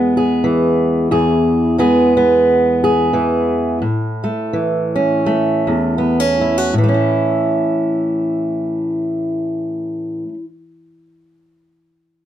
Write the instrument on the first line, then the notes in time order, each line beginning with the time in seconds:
steel-string acoustic guitar
Already playing: E2 G#3 B3 G#4
0.17 G#4
0.44 E3
1.11 E2 G#4
1.78 G#3 B3 G#4
2.17 B3
2.84 G#4
3.13 E3
3.82 A2
4.24 A3
4.53 E3
4.96 C#4
5.26 A3
5.67 E2
5.98 B3
6.20 C#4
6.41 E4
6.58 F#4
6.73 A2
6.78 E3
6.84 A3
6.89 C#4
6.94 E4